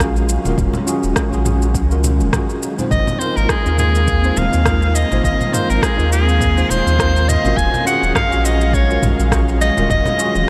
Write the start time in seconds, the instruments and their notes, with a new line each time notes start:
Already playing: sub bass A#1, analog synth pad D#3 F#3 G#3 C#4 F5
0.00 tine electric piano C#4 F4 F#4 G#4, kick, cross-stick, shaker
0.16 shaker
0.29 shaker
0.44 sub bass D#1, tine electric piano C#4 F4 F#4 A#4, low conga, shaker
0.58 sub bass D#1, kick, mid tom, shaker
0.73 low conga, shaker
0.86 tine electric piano C#4 F4 F#4 G#4, shaker
1.03 sub bass D#1, shaker
1.16 kick, cross-stick, shaker
1.31 sub bass A#1, tine electric piano C#4 F4 F#4 G#4, shaker
1.45 mid tom, shaker
1.62 shaker
1.74 sub bass C#2, kick, shaker
1.89 tine electric piano C#4 F4 F#4 A#4, shaker
2.04 low conga, shaker
2.20 sub bass D#1, high conga, shaker
2.31 tine electric piano C#4 F4 F#4 G#4, kick, cross-stick, mid tom, shaker
2.50 shaker
2.63 shaker
2.77 tine electric piano C4 D#4 F4 C5, low conga, shaker
2.91 sub bass G#1, analog synth pad A#3 C4 F5, soprano saxophone D#5, kick, mid tom, shaker
3.07 low conga, shaker
3.19 tine electric piano C4 D#4 F4 A#4, soprano saxophone C5, shaker
3.36 sub bass G#1, soprano saxophone A#4, shaker
3.49 soprano saxophone G#4, kick, cross-stick, shaker
3.65 sub bass D#2, tine electric piano C4 D#4 F4 A#4, shaker
3.78 soprano saxophone G#4, mid tom, shaker
3.95 shaker
4.08 kick, shaker
4.23 tine electric piano C4 D#4 F4 C5, shaker
4.37 sub bass D#1, soprano saxophone F5, high conga, low conga, shaker
4.53 sub bass D#2, shaker
4.64 tine electric piano C4 D#4 F4 A#4, kick, cross-stick, mid tom, shaker
4.82 shaker
4.95 soprano saxophone D#5, shaker
5.10 sub bass G#1, tine electric piano C4 D#4 F4 C5, low conga, shaker
5.24 sub bass G#1, soprano saxophone D#5, kick, shaker
5.41 low conga, shaker
5.52 tine electric piano C4 D#4 F4 A#4, soprano saxophone C5, mid tom, shaker
5.70 sub bass G#1, soprano saxophone A#4, shaker
5.82 soprano saxophone G#4, kick, cross-stick, shaker
5.96 sub bass D#2, tine electric piano C4 D#4 F4 A#4, shaker
6.12 soprano saxophone G#4, shaker
6.29 shaker
6.41 kick, mid tom, shaker
6.55 tine electric piano C4 D#4 F4 C5, shaker
6.70 sub bass D#1, soprano saxophone C5, low conga, shaker
6.86 sub bass D#2, high conga, shaker
6.98 tine electric piano C4 D#4 F4 A#4, kick, cross-stick, shaker
7.16 shaker
7.28 soprano saxophone D#5, mid tom, shaker
7.42 sub bass G#1, tine electric piano C#4 F4 F#4 A#4, low conga, shaker
7.57 sub bass D#1, analog synth pad F#3 G#3 C#4, soprano saxophone G#5, kick, shaker
7.74 low conga, shaker
7.85 tine electric piano C#4 F4 F#4 G#4, soprano saxophone F#5, shaker
8.03 sub bass D#1, shaker
8.15 soprano saxophone F5, kick, cross-stick, mid tom, shaker
8.30 sub bass A#1, tine electric piano C#4 F4 F#4 G#4, shaker
8.45 soprano saxophone D#5, shaker
8.61 shaker
8.73 soprano saxophone C#5, kick, shaker
8.88 tine electric piano C#4 F4 F#4 A#4, shaker
9.02 sub bass A#1, mid tom, high conga, low conga, shaker
9.19 sub bass A#1, shaker
9.30 tine electric piano C#4 F4 F#4 G#4, kick, cross-stick, shaker
9.48 shaker
9.61 soprano saxophone D#5, shaker
9.76 sub bass D#1, tine electric piano C#4 F4 F#4 A#4, low conga, shaker
9.90 sub bass D#1, soprano saxophone D#5, kick, mid tom, shaker
10.05 low conga, shaker
10.18 tine electric piano C#4 F4 F#4 G#4, shaker
10.35 sub bass D#1, high conga, shaker